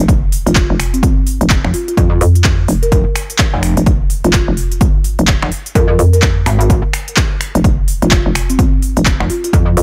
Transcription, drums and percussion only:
0.08 kick, closed hi-hat
0.32 open hi-hat
0.47 closed hi-hat
0.55 kick, clap, closed hi-hat
0.80 finger snap, open hi-hat
0.94 closed hi-hat
1.03 kick, closed hi-hat
1.27 open hi-hat
1.41 closed hi-hat
1.50 kick, clap, closed hi-hat
1.65 finger snap
1.74 open hi-hat
1.88 closed hi-hat
1.97 kick, closed hi-hat
2.21 open hi-hat
2.35 closed hi-hat
2.44 kick, clap, closed hi-hat
2.68 open hi-hat
2.83 closed hi-hat
2.92 kick, closed hi-hat
3.16 finger snap, open hi-hat
3.30 closed hi-hat
3.38 kick, clap, closed hi-hat
3.63 finger snap, open hi-hat
3.77 closed hi-hat
3.86 kick, closed hi-hat
4.10 open hi-hat
4.24 closed hi-hat
4.33 kick, clap, closed hi-hat
4.57 open hi-hat
4.72 closed hi-hat
4.81 kick, closed hi-hat
5.04 open hi-hat
5.19 closed hi-hat
5.27 kick, clap, closed hi-hat
5.42 finger snap
5.52 open hi-hat
5.66 closed hi-hat
5.75 kick, closed hi-hat
5.99 open hi-hat
6.13 closed hi-hat
6.22 kick, clap, closed hi-hat
6.46 finger snap, open hi-hat
6.61 closed hi-hat
6.70 kick, closed hi-hat
6.93 finger snap, open hi-hat
7.08 closed hi-hat
7.17 kick, clap, closed hi-hat
7.41 finger snap, open hi-hat
7.55 closed hi-hat
7.64 kick, closed hi-hat
7.88 open hi-hat
8.02 closed hi-hat
8.11 kick, clap, closed hi-hat
8.35 finger snap, open hi-hat
8.50 closed hi-hat
8.59 kick, closed hi-hat
8.82 open hi-hat
8.97 closed hi-hat
9.06 kick, clap, closed hi-hat
9.21 finger snap
9.30 open hi-hat
9.44 closed hi-hat
9.53 kick, closed hi-hat
9.77 open hi-hat

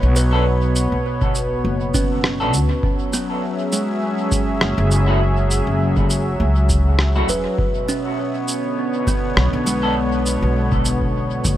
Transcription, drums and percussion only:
0.16 shaker
0.76 shaker
1.22 kick
1.35 shaker
1.94 kick, shaker
2.24 cross-stick
2.54 shaker
2.83 kick
3.13 shaker
3.72 shaker
4.32 kick, shaker
4.61 cross-stick
4.91 shaker
5.51 shaker
5.97 kick
6.10 shaker
6.69 kick, shaker
6.99 cross-stick
7.29 shaker
7.59 kick
7.89 shaker
8.48 shaker
9.07 kick, shaker
9.37 cross-stick
9.67 shaker
10.26 shaker
10.72 kick
10.85 shaker
11.02 kick
11.45 kick, shaker

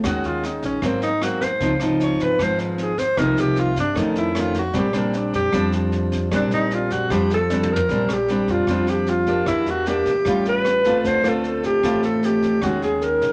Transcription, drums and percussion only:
0.04 kick, cross-stick, snare
0.24 snare
0.43 snare
0.62 kick, snare
0.82 kick, cross-stick, snare
1.02 snare
1.22 cross-stick, snare
1.41 kick, snare
1.60 kick, snare
1.80 cross-stick, snare
2.00 snare
2.20 kick, snare
2.39 kick, cross-stick, snare
2.59 snare
2.78 snare
2.98 kick, snare
3.17 kick, cross-stick, snare
3.37 snare
3.56 snare
3.76 kick, snare
3.96 kick, cross-stick, snare
4.16 snare
4.35 cross-stick, snare
4.54 kick, snare
4.73 kick, snare
4.93 cross-stick, snare
5.13 snare
5.33 kick, snare
5.53 kick, cross-stick, snare
5.72 snare
5.92 snare
6.12 kick, snare
6.32 kick, cross-stick, snare
6.51 snare
6.71 snare
6.90 kick, snare
7.10 kick, cross-stick, snare
7.30 snare
7.50 snare
7.63 mid tom
7.76 floor tom
7.89 kick, snare
8.09 cross-stick, snare
8.28 snare
8.48 kick, snare
8.67 kick, cross-stick, snare
8.87 snare
9.07 snare
9.26 kick, snare
9.46 kick, cross-stick, snare
9.66 snare
9.86 snare
10.06 kick, snare
10.25 kick, cross-stick, snare
10.45 snare
10.65 cross-stick, snare
10.84 kick, snare
11.04 kick, snare
11.24 cross-stick, snare
11.44 snare
11.63 kick, snare
11.83 kick, cross-stick, snare
12.03 snare
12.23 snare
12.42 kick, snare
12.62 kick, cross-stick, snare
12.82 snare
13.01 snare
13.21 kick, snare

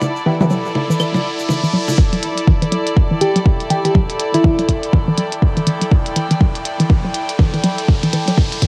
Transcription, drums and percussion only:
0.01 low bongo, shaker
0.16 shaker
0.41 mid tom, low bongo, shaker
0.50 shaker
0.65 shaker
0.75 low bongo
0.91 shaker
1.00 claves, shaker
1.14 low bongo, shaker
1.39 shaker
1.49 low bongo, shaker
1.64 shaker
1.88 low bongo, shaker
1.98 kick
2.13 closed hi-hat
2.23 closed hi-hat
2.38 closed hi-hat
2.47 kick
2.62 closed hi-hat
2.72 closed hi-hat
2.87 closed hi-hat
2.97 kick
3.21 closed hi-hat
3.36 closed hi-hat
3.46 kick
3.60 closed hi-hat
3.70 closed hi-hat
3.85 closed hi-hat
3.95 kick
4.10 closed hi-hat
4.19 closed hi-hat
4.34 closed hi-hat
4.44 kick
4.59 closed hi-hat
4.69 kick, closed hi-hat
4.83 closed hi-hat
4.93 kick
5.18 closed hi-hat
5.32 closed hi-hat
5.42 kick
5.57 closed hi-hat
5.67 closed hi-hat
5.82 closed hi-hat
5.92 kick
6.06 closed hi-hat
6.16 closed hi-hat
6.31 closed hi-hat
6.41 kick
6.55 closed hi-hat
6.65 closed hi-hat
6.80 closed hi-hat
6.90 kick
7.14 closed hi-hat
7.29 closed hi-hat
7.39 kick
7.54 closed hi-hat
7.64 closed hi-hat
7.78 closed hi-hat
7.88 kick
8.03 closed hi-hat
8.13 closed hi-hat
8.28 closed hi-hat
8.37 kick
8.52 closed hi-hat
8.62 kick, closed hi-hat

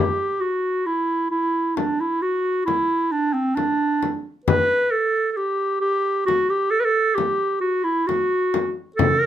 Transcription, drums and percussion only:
1.77 frame drum
2.68 frame drum
3.57 frame drum
4.03 frame drum
4.48 frame drum
6.28 frame drum
7.18 frame drum
8.09 frame drum
8.54 frame drum
8.99 frame drum, darbuka dum

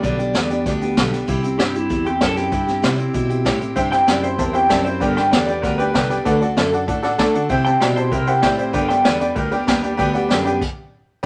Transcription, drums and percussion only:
0.04 kick, closed hi-hat
0.19 closed hi-hat
0.35 snare, closed hi-hat
0.50 closed hi-hat
0.66 kick, snare, closed hi-hat
0.82 closed hi-hat
0.97 kick, snare, closed hi-hat
1.13 snare, closed hi-hat
1.28 kick, closed hi-hat
1.43 closed hi-hat
1.59 snare, closed hi-hat
1.75 closed hi-hat
1.90 kick, closed hi-hat
2.06 closed hi-hat
2.21 kick, snare, closed hi-hat
2.37 snare, closed hi-hat
2.52 kick, closed hi-hat
2.68 snare, closed hi-hat
2.84 snare, closed hi-hat
2.99 closed hi-hat
3.14 kick, closed hi-hat
3.30 closed hi-hat
3.46 kick, snare, closed hi-hat
3.61 closed hi-hat
3.76 kick, closed hi-hat
3.92 snare, closed hi-hat
4.08 snare, closed hi-hat
4.23 closed hi-hat
4.39 kick, closed hi-hat
4.54 closed hi-hat
4.70 kick, snare, closed hi-hat
4.86 closed hi-hat
5.01 kick, closed hi-hat
5.17 snare, closed hi-hat
5.33 snare, closed hi-hat
5.48 closed hi-hat
5.63 kick, snare, closed hi-hat
5.79 closed hi-hat
5.95 kick, snare, closed hi-hat
6.10 snare, closed hi-hat
6.26 kick, closed hi-hat
6.42 closed hi-hat
6.57 snare, closed hi-hat
6.73 closed hi-hat
6.88 kick, closed hi-hat
7.03 snare, closed hi-hat
7.19 kick, snare, closed hi-hat
7.35 closed hi-hat
7.50 kick, closed hi-hat
7.66 closed hi-hat
7.81 snare, closed hi-hat
7.97 closed hi-hat
8.12 kick, closed hi-hat
8.27 closed hi-hat
8.43 kick, snare, closed hi-hat
8.58 closed hi-hat
8.74 kick, closed hi-hat
8.90 snare, closed hi-hat
9.05 snare, closed hi-hat
9.21 closed hi-hat
9.36 kick, closed hi-hat
9.51 closed hi-hat
9.68 kick, snare, closed hi-hat
9.83 closed hi-hat
9.99 kick, closed hi-hat
10.15 closed hi-hat
10.30 snare, closed hi-hat
10.46 closed hi-hat
10.61 kick, crash

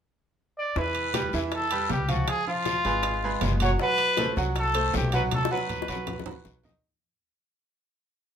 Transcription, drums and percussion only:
0.76 high bongo, high conga, long guiro
0.95 high conga, high timbale
1.14 high bongo, high conga, high timbale, low timbale, short guiro
1.33 high bongo, high conga, short guiro
1.52 high bongo, high conga, high timbale, long guiro
1.71 high bongo, high conga, high timbale
1.90 high bongo, low bongo, high conga, low timbale, short guiro
2.09 high bongo, high conga, high timbale, short guiro
2.28 high bongo, high conga, high timbale, long guiro
2.47 high conga
2.65 high bongo, high conga, high timbale, low timbale, short guiro
2.85 high bongo, high conga, high timbale, short guiro
3.03 high bongo, high conga, high timbale, long guiro
3.23 high bongo, high conga
3.41 high bongo, low bongo, high conga, high timbale, low timbale, short guiro
3.60 high bongo, high conga, high timbale, short guiro
3.79 high bongo, high conga, long guiro
3.98 high conga, high timbale
4.17 high bongo, high conga, high timbale, low timbale, short guiro
4.36 high bongo, high conga, short guiro
4.56 high bongo, high conga, high timbale, long guiro
4.75 high bongo, high conga, high timbale
4.94 high bongo, low bongo, high conga, low timbale, short guiro
5.12 high bongo, high conga, high timbale, short guiro
5.31 high bongo, high conga, high timbale, long guiro
5.45 high bongo
5.57 high bongo
5.69 low conga, high timbale, low timbale, short guiro
5.82 high bongo
5.88 high timbale, short guiro
5.95 low bongo
6.07 low bongo, low conga, high timbale, long guiro
6.19 low bongo
6.26 low conga, high timbale
6.32 low bongo
6.45 low bongo, short guiro
6.63 low conga, low timbale, short guiro
6.69 low bongo

